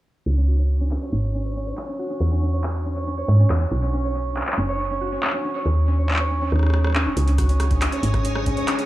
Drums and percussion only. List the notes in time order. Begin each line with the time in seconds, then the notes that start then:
0.91 clap
1.77 clap
2.64 clap
3.50 clap
4.36 clap
4.42 clap
4.47 clap
4.52 clap
5.23 clap
5.25 clap
5.28 clap
5.31 clap
6.09 clap
6.12 clap
6.14 clap
6.17 clap
6.52 cross-stick
6.56 cross-stick
6.59 cross-stick
6.63 cross-stick
6.66 cross-stick
6.70 cross-stick
6.74 cross-stick
6.84 cross-stick
6.87 cross-stick
6.90 cross-stick
6.92 cross-stick
6.95 cross-stick, clap
6.98 cross-stick
7.01 cross-stick
7.03 cross-stick
7.17 closed hi-hat
7.28 closed hi-hat
7.38 kick, cross-stick, closed hi-hat
7.49 closed hi-hat
7.60 cross-stick, closed hi-hat
7.71 kick, closed hi-hat
7.82 cross-stick, clap, closed hi-hat
7.92 closed hi-hat
8.03 closed hi-hat
8.14 kick, cross-stick, closed hi-hat
8.25 closed hi-hat
8.35 cross-stick
8.46 kick, closed hi-hat
8.57 closed hi-hat
8.68 cross-stick, clap, closed hi-hat
8.79 closed hi-hat